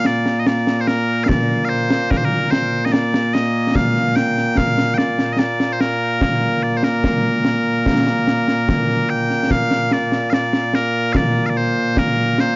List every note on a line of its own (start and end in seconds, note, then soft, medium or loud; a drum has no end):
0.00 12.56 A#2 medium
0.00 12.56 A#3 medium
0.05 0.40 D5 medium
0.05 snare medium
0.26 snare medium
0.40 0.47 D#5 medium
0.47 0.81 D5 medium
0.47 snare medium
0.67 snare medium
0.81 0.87 C5 medium
0.87 1.24 A#4 medium
0.87 snare medium
1.24 1.28 F5 loud
1.28 1.65 D5 loud
1.28 concert bass drum medium
1.28 snare loud
1.65 1.69 F5 medium
1.69 2.10 C5 medium
1.91 snare medium
2.10 2.17 A#4 loud
2.10 concert bass drum medium
2.10 snare loud
2.17 2.25 C5 medium
2.25 2.51 A#4 loud
2.51 2.85 C5 medium
2.51 snare medium
2.85 2.92 D#5 medium
2.92 3.34 D5 loud
2.92 snare loud
3.14 snare medium
3.34 3.75 D#5 medium
3.34 snare medium
3.75 4.16 F5 loud
3.75 concert bass drum medium
3.75 snare loud
3.96 snare soft
4.16 4.57 G5 loud
4.16 snare medium
4.37 snare soft
4.57 4.94 F5 loud
4.57 concert bass drum medium
4.57 snare medium
4.78 snare medium
4.94 5.33 D5 medium
4.94 4.98 G5 medium
4.98 snare medium
5.19 snare medium
5.33 5.39 D#5 medium
5.39 5.73 D5 medium
5.39 snare medium
5.60 snare medium
5.73 5.80 C5 medium
5.80 6.63 A#4 loud
5.80 snare medium
6.21 concert bass drum medium
6.21 snare loud
6.63 6.77 D5 medium
6.77 6.84 C5 medium
6.83 9.10 A#4 medium
6.83 snare medium
7.04 concert bass drum medium
7.04 snare loud
7.45 snare medium
7.86 concert bass drum soft
7.86 snare medium
8.07 snare medium
8.27 snare medium
8.48 snare medium
8.69 concert bass drum medium
8.69 snare medium
8.89 snare soft
9.10 9.51 G5 loud
9.30 snare soft
9.51 9.93 F5 loud
9.51 concert bass drum medium
9.51 snare loud
9.71 snare medium
9.91 10.30 D5 medium
9.91 snare medium
10.12 snare medium
10.30 10.75 D5 medium
10.30 10.33 F5 medium
10.30 snare medium
10.53 snare medium
10.74 11.13 A#4 medium
10.74 snare medium
11.13 11.46 D5 loud
11.13 11.16 F5 loud
11.13 concert bass drum medium
11.13 snare loud
11.46 11.57 D5 medium
11.46 11.49 F5 medium
11.57 11.98 C5 medium
11.97 12.40 A#4 loud
11.97 concert bass drum medium
11.97 snare loud
12.38 12.56 C5 medium
12.38 snare medium